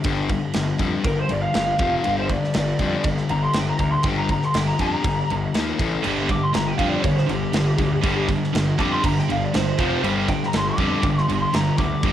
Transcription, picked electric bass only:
0.05 G1
0.56 G1
0.79 F2
1.04 G1
1.30 G1
1.55 G1
1.79 F1
2.06 G1
2.55 G1
2.79 F2
3.05 G1
3.30 G1
3.55 G1
3.79 D2
4.04 G1
4.56 G1
4.79 F2
5.04 G1
5.30 G1
5.55 D#2
5.79 A1
6.05 G1
6.55 G1
6.79 F2
7.04 G1
7.29 G1
7.55 G1
7.78 D2
8.04 G1
8.55 G1
8.79 F2
9.04 G1
9.29 G1
9.54 G1
9.79 F1
10.04 G1
10.54 G1
10.78 F2
11.03 G1
11.29 G1
11.54 G1
11.78 D2
12.03 G1

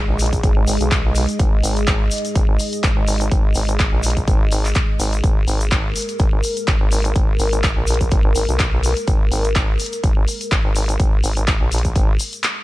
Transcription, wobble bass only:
0.09 A#1
0.43 G#1
0.68 G#1
0.81 B1
1.39 G#1
1.64 G#1
2.35 G#1
2.83 G#1
3.32 G#1
3.56 G#1
3.93 A#1
4.28 G#1
5.00 G#1
5.24 G#1
5.48 G#1
6.20 G#1
6.68 G#1
7.16 G#1
7.40 G#1
7.77 A#1
8.12 G#1
8.36 G#1
8.49 B1
9.08 G#1
9.32 G#1
10.04 G#1
10.52 G#1
11.00 G#1
11.24 G#1
11.61 A#1
11.96 G#1

